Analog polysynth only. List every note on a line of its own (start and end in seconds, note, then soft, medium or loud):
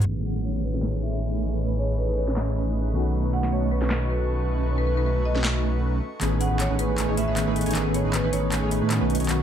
0.06 2.92 A3 medium
0.06 2.92 C#4 medium
0.06 2.92 D#4 medium
0.06 2.92 G#4 medium
0.06 2.92 B4 medium
2.94 6.00 A3 medium
2.94 6.00 C#4 medium
2.94 6.00 D#4 medium
2.94 6.00 F#4 medium
2.94 6.00 B4 medium
6.21 6.48 A3 medium
6.21 6.48 C#4 medium
6.21 6.48 D#4 medium
6.21 6.48 G#4 medium
6.21 6.48 B4 medium
6.51 6.59 A3 medium
6.51 6.59 C#4 medium
6.51 6.59 D#4 medium
6.51 6.59 G#4 medium
6.51 6.59 B4 medium
6.70 6.77 A3 medium
6.70 6.77 C#4 medium
6.70 6.77 D#4 medium
6.70 6.77 G#4 medium
6.70 6.77 B4 medium
6.79 6.96 A3 medium
6.79 6.96 C#4 medium
6.79 6.96 D#4 medium
6.79 6.96 G#4 medium
6.79 6.96 B4 medium
6.98 7.07 A3 medium
6.98 7.07 C#4 medium
6.98 7.07 D#4 medium
6.98 7.07 G#4 medium
6.98 7.07 B4 medium
7.09 7.16 A3 medium
7.09 7.16 C#4 medium
7.09 7.16 D#4 medium
7.09 7.16 G#4 medium
7.09 7.16 C#5 loud
7.18 7.25 A3 medium
7.18 7.25 C#4 medium
7.18 7.25 D#4 medium
7.18 7.25 G#4 medium
7.18 7.25 B4 medium
7.28 7.45 A3 medium
7.28 7.45 C#4 medium
7.28 7.45 D#4 medium
7.28 7.45 G#4 medium
7.28 7.45 B4 loud
7.47 7.64 A3 medium
7.47 7.64 C#4 medium
7.47 7.64 D#4 medium
7.47 7.64 G#4 medium
7.47 7.64 B4 loud
7.66 7.73 A3 loud
7.66 7.73 C#4 medium
7.66 7.73 D#4 medium
7.66 7.73 G#4 medium
7.66 7.73 C#5 loud
7.75 8.02 A3 medium
7.75 8.02 C#4 medium
7.75 8.02 D#4 medium
7.75 8.02 G#4 medium
7.75 8.02 B4 medium
8.05 8.13 A3 medium
8.05 8.13 C#4 medium
8.05 8.13 D#4 medium
8.05 8.13 G#4 medium
8.05 8.13 B4 medium
8.24 8.31 A3 medium
8.24 8.31 C#4 medium
8.24 8.31 D#4 medium
8.24 8.31 G#4 medium
8.24 8.31 B4 medium
8.33 8.50 A3 medium
8.33 8.50 C#4 medium
8.33 8.50 D#4 medium
8.33 8.50 G#4 medium
8.33 8.50 B4 medium
8.52 8.61 A3 medium
8.52 8.61 C#4 medium
8.52 8.61 D#4 medium
8.52 8.61 G#4 medium
8.52 8.61 B4 medium
8.62 8.70 A3 medium
8.62 8.70 C#4 medium
8.62 8.70 D#4 medium
8.62 8.70 G#4 medium
8.62 8.70 C#5 loud
8.71 8.79 A3 medium
8.71 8.79 C#4 medium
8.71 8.79 D#4 medium
8.71 8.79 G#4 medium
8.71 8.79 B4 medium
8.81 8.98 A3 medium
8.81 8.98 C#4 medium
8.81 8.98 D#4 medium
8.81 8.98 G#4 medium
8.81 8.98 B4 medium
9.01 9.18 A3 medium
9.01 9.18 C#4 medium
9.01 9.18 D#4 medium
9.01 9.18 F#4 medium
9.01 9.18 B4 loud
9.20 9.27 A3 medium
9.20 9.27 C#4 medium
9.20 9.27 D#4 medium
9.20 9.27 F#4 medium
9.20 9.27 C#5 loud
9.29 9.43 A3 medium
9.29 9.43 C#4 medium
9.29 9.43 D#4 medium
9.29 9.43 F#4 medium
9.29 9.43 B4 medium